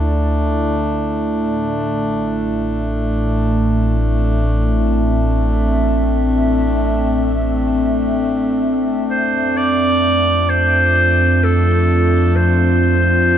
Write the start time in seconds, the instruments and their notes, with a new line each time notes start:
Already playing: synth drone D2, ambient pad D3 A3 E4 F4 D5, harmonium A3 D4
1.25 synth drone A1, ambient pad A2
2.19 ambient pad C4
4.15 ambient pad E5
8.63 synth drone F2
9.11 clarinet C5
9.57 clarinet D5
10.15 ambient pad F4
10.49 clarinet C5
11.43 clarinet A4
12.36 clarinet C5